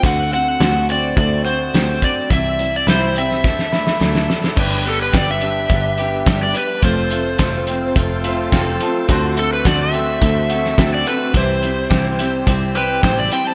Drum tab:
CC |----------------|----------------|x---------------|----------------|
HH |x-x-x-x-x-x-x-x-|x-x-x-x---------|--x-x-x-x-x-x-x-|x-x-x-x-x-x-x-x-|
SD |----o-------o---|----o--ooooooooo|----o-------o---|----o-------o---|
BD |o-------o-----o-|o-------o-------|o---o---o---o---|o---o---o---o---|

CC |----------------|----------------|
HH |x-x-x-x-x-x-x-x-|x-x-x-x-x-x-x-x-|
SD |----o------oo---|----o-------o---|
BD |o---o---o---o---|o---o---o---o---|